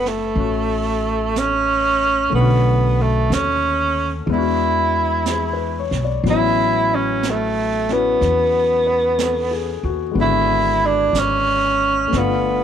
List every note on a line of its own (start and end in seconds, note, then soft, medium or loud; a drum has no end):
0.00 0.33 F#1 medium
0.00 2.28 A3 soft
0.00 0.35 C#4 soft
0.00 2.34 E4 soft
0.00 2.35 G#4 soft
0.00 2.36 B4 soft
0.06 1.40 A3 medium
0.06 snare soft
0.36 2.28 A1 medium
0.36 2.32 C#4 soft
0.36 brush sweep soft
0.40 2.34 F#4 soft
1.36 2.34 C#4 medium
1.36 brush sweep soft
1.36 snare soft
1.36 hi-hat pedal soft
2.30 3.27 B1 medium
2.30 4.27 A3 soft
2.30 4.29 C#4 soft
2.30 brush sweep soft
2.35 4.31 D3 soft
2.35 3.03 B3 medium
2.41 4.33 F#4 soft
3.01 3.35 A3 medium
3.30 4.24 D#2 medium
3.30 4.12 C#4 medium
3.30 brush sweep soft
3.30 snare soft
3.30 hi-hat pedal soft
4.26 5.87 E2 medium
4.26 6.23 G#3 soft
4.26 6.25 B3 soft
4.26 brush sweep soft
4.33 6.26 D4 soft
4.33 5.90 E4 medium
4.37 6.29 F#4 soft
5.26 5.73 G#4 soft
5.26 brush sweep soft
5.26 snare soft
5.26 hi-hat pedal soft
5.53 5.94 B4 soft
5.79 6.08 C#5 soft
5.91 6.22 B1 medium
5.91 snare soft
6.04 6.36 D5 soft
6.24 8.16 A1 medium
6.24 10.16 F#3 soft
6.24 10.13 B3 soft
6.24 brush sweep soft
6.24 snare soft
6.29 7.87 C#4 soft
6.29 7.90 E4 soft
6.29 6.96 E4 medium
6.95 7.32 C#4 medium
7.23 brush sweep soft
7.23 snare soft
7.23 hi-hat pedal soft
7.30 7.94 A3 medium
7.89 10.16 C#4 soft
7.89 10.17 E4 soft
7.89 9.83 F#4 soft
7.89 snare soft
7.93 9.86 B3 medium
8.21 9.80 E2 medium
8.21 brush sweep soft
8.21 snare soft
8.87 9.37 B4 soft
9.18 9.80 A4 soft
9.18 brush sweep soft
9.18 snare soft
9.18 hi-hat pedal soft
9.51 10.01 G#4 soft
9.83 10.13 D#2 medium
9.83 10.21 F#4 soft
10.12 11.09 G#1 medium
10.12 12.10 G#3 soft
10.12 12.10 B3 soft
10.17 12.13 D3 soft
10.17 10.87 E4 medium
10.17 brush sweep soft
10.22 12.15 F#4 soft
10.86 11.21 D4 medium
11.13 12.07 G#1 medium
11.13 brush sweep soft
11.13 snare soft
11.13 hi-hat pedal soft
11.19 12.20 C#4 medium
12.08 12.64 A3 soft
12.08 12.64 B3 soft
12.12 12.64 G1 medium
12.12 12.64 D4 soft
12.12 brush sweep soft
12.12 snare soft
12.18 12.64 B3 medium
12.18 12.64 F4 soft